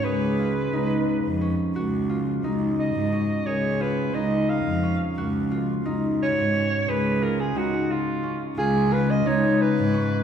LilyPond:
<<
  \new Staff \with { instrumentName = "Soprano saxophone" } { \time 5/8 \key des \mixolydian \tempo 4 = 88 ces''2 r8 | r4. ees''4 | des''8 ces''8 ees''8 f''8. r16 | r4. des''4 |
ces''8 bes'16 aes'16 ges'8 f'8. r16 | aes'8 ces''16 ees''16 des''8 ces''4 | }
  \new Staff \with { instrumentName = "Harp" } { \time 5/8 \key des \mixolydian aes'8 f'8 ees'4 des'8 | ges'8 f'8 ees'4 des'8 | aes'8 f'8 ees'4 des'8 | ges'8 f'8 ees'4 des'8 |
aes'8 f'8 ees'4 des'8 | f'8 f'8 ees'4 des'8 | }
  \new Staff \with { instrumentName = "Cello" } { \clef bass \time 5/8 \key des \mixolydian des,4 des,8. f,8 r16 | des,4 des,8. aes,8 r16 | des,4 des,8. f,8 r16 | des,4 des,8. aes,8 r16 |
des,4 des,16 r4 r16 | des,4 des,8 r16 aes,8 r16 | }
>>